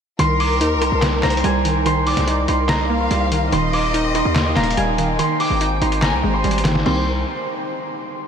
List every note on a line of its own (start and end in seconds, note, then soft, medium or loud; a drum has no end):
0.19 0.62 C2 loud
0.19 1.23 D#3 loud
0.19 3.49 D#4 medium
0.19 1.19 A#4 loud
0.19 5.15 A#4 medium
0.19 3.49 C5 medium
0.19 3.49 G5 medium
0.19 0.81 C6 loud
0.19 closed hi-hat medium
0.40 1.62 D6 medium
0.40 open hi-hat medium
0.61 0.78 D#2 loud
0.61 0.80 D#4 loud
0.61 closed hi-hat medium
0.76 0.91 C2 loud
0.82 1.86 D#4 medium
0.82 1.86 C6 medium
0.82 closed hi-hat medium
0.92 1.22 C2 loud
1.02 snare loud
1.02 clap medium
1.02 closed hi-hat medium
1.23 1.43 C2 loud
1.23 2.28 A#3 medium
1.23 1.43 C5 medium
1.23 2.63 A#5 medium
1.23 snare loud
1.23 clap medium
1.23 closed hi-hat medium
1.30 closed hi-hat medium
1.37 closed hi-hat medium
1.44 2.14 C2 loud
1.44 2.48 G3 medium
1.44 2.94 G#5 medium
1.44 closed hi-hat medium
1.65 1.85 D#3 medium
1.65 closed hi-hat medium
1.86 2.90 D#3 medium
1.86 2.48 C6 loud
1.86 closed hi-hat medium
2.07 2.26 D5 medium
2.07 3.29 D6 medium
2.07 closed hi-hat soft
2.07 open hi-hat medium
2.17 2.47 C2 loud
2.17 snare medium
2.17 closed hi-hat medium
2.27 2.47 D#4 medium
2.27 closed hi-hat medium
2.48 3.08 C2 loud
2.48 3.52 D#4 medium
2.48 3.00 C6 medium
2.48 closed hi-hat medium
2.69 2.89 D#5 medium
2.69 4.09 A#5 medium
2.69 snare loud
2.69 clap medium
2.69 closed hi-hat medium
2.90 3.52 A#3 medium
2.90 3.49 F5 medium
3.01 3.52 C6 medium
3.11 3.51 C2 loud
3.11 3.53 G3 medium
3.11 closed hi-hat medium
3.32 3.51 D#3 medium
3.32 closed hi-hat medium
3.52 4.22 D#1 loud
3.52 4.57 D#3 medium
3.52 6.82 D#4 medium
3.52 5.17 D#5 medium
3.52 4.53 D#5 loud
3.52 6.82 G5 medium
3.52 4.15 C6 loud
3.52 closed hi-hat medium
3.73 4.95 D6 medium
3.73 open hi-hat medium
3.94 4.14 D#4 loud
3.94 closed hi-hat medium
4.15 5.19 D#4 medium
4.15 5.19 C6 medium
4.15 closed hi-hat medium
4.25 4.55 D#2 loud
4.35 snare loud
4.35 clap medium
4.35 closed hi-hat medium
4.56 4.77 D#1 loud
4.56 5.19 A#3 medium
4.56 4.76 F5 medium
4.56 5.96 A#5 medium
4.56 snare loud
4.56 clap medium
4.56 closed hi-hat medium
4.64 closed hi-hat medium
4.70 closed hi-hat medium
4.77 5.17 D#1 loud
4.77 5.19 G3 medium
4.77 6.27 G#5 medium
4.77 closed hi-hat medium
4.98 5.18 D#3 medium
4.98 closed hi-hat medium
5.19 6.23 D#3 medium
5.19 6.84 C5 medium
5.19 6.84 G#5 medium
5.19 5.37 C6 loud
5.19 closed hi-hat medium
5.40 5.60 G5 medium
5.40 5.79 D6 medium
5.40 open hi-hat medium
5.50 5.80 G#1 loud
5.61 5.81 D#4 medium
5.61 closed hi-hat medium
5.82 6.14 G#1 loud
5.82 6.86 D#4 loud
5.82 6.00 C6 medium
5.82 closed hi-hat medium
5.92 closed hi-hat medium
6.02 6.22 G#5 medium
6.02 6.32 A#5 medium
6.02 snare loud
6.02 clap medium
6.02 closed hi-hat medium
6.13 6.23 C2 loud
6.23 6.43 G#1 loud
6.23 6.86 G#3 medium
6.23 6.82 C5 medium
6.34 6.83 C6 medium
6.44 6.84 G#1 loud
6.44 6.85 G3 medium
6.44 closed hi-hat soft
6.51 closed hi-hat medium
6.58 closed hi-hat medium
6.65 6.85 D#3 medium
6.65 snare loud
6.65 clap medium
6.65 closed hi-hat medium
6.75 snare medium
6.86 7.25 C2 loud
6.86 7.05 D#3 medium
6.86 7.05 G3 medium
6.86 7.05 A#3 medium
6.86 7.05 C4 medium
6.86 7.05 C5 medium
6.86 7.05 C6 medium
6.86 crash medium